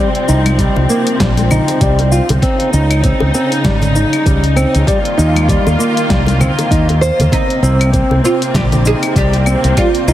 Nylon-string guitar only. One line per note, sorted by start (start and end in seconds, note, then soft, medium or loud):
0.28 0.58 D#4 medium
0.59 0.75 G3 medium
0.89 1.19 A#3 medium
1.20 1.30 G3 medium
1.51 1.80 D#4 medium
1.81 1.98 G3 medium
2.12 2.28 F4 medium
2.42 2.72 C4 medium
2.73 3.03 D#4 medium
3.04 3.33 C4 medium
3.34 3.51 C4 medium
3.65 3.75 G3 medium
3.95 4.25 D#4 medium
4.26 4.43 G3 medium
4.56 4.73 C4 medium
4.87 4.97 G3 medium
5.18 5.47 D#4 medium
5.49 5.65 G3 medium
5.79 6.08 A#3 medium
6.10 6.20 G3 medium
6.40 6.50 C4 medium
6.71 6.87 D#4 medium
7.01 7.18 C5 medium
7.32 7.61 C4 medium
7.63 7.92 C4 medium
7.93 8.23 C4 medium
8.24 8.41 C4 medium
8.55 8.65 G3 medium
8.86 9.15 D#4 medium
9.16 9.33 G3 medium
9.47 9.63 C4 medium
9.77 9.87 G3 medium
10.08 10.13 D#4 medium